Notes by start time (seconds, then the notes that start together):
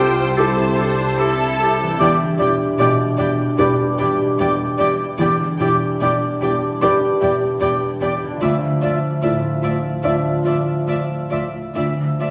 Already playing: C2 G2 C3 G3 A3 C4 F4 G4 A4 C5 E5 G5
0.37 E4 G4 A4 A5
0.78 D4 G4 A4
1.18 E4 G4 A4 A5
1.59 G4 A4
1.82 E3
1.86 D4
1.91 G4
1.95 G3 D4 E4 E5
1.99 E1 E2 G4 D5 G5
2.38 E1 E2 E4 G4 D5 G5
2.78 E1 E2 B2 E4 G4 D5 G5
3.17 E1 E2 E4 G4 D5 G5
3.58 E1 E2 D4 E4 G4 B4 D5 G5
3.98 E1 E2 E4 G4 D5 G5
4.38 E1 E2 E4 G4 D5 G5
4.78 E1 E2 E4 G4 D5 G5
5.18 E1 E2 G3 D4 E4 G4 D5 G5
5.59 E1 E2 E4 G4 D5 G5
6.00 E1 E2 D4 E4 G4 D5 G5
6.41 E1 E2 E4 G4 D5 G5
6.81 E1 E2 D4 E4 G4 B4 D5 G5
7.21 E1 E2 E4 G4 D5 G5
7.60 E1 E2 E4 G4 D5 G5
8.01 E1 E2 E4 G4 D5 G5
8.24 D3
8.28 D4
8.33 F4
8.37 F4 D5 E5
8.42 D2 F3 E5
8.81 D2 F4 D5 E5
9.22 D2 A2 F4 D5 E5
9.62 D2 F4 D5 E5
10.02 D2 D4 F4 D5 E5
10.44 D2 F4 D5 E5
10.87 D2 F4 D5 E5
11.30 D2 F4 D5 E5
11.74 D2 F3 F4 D5 E5
12.20 D2 F4 D5 E5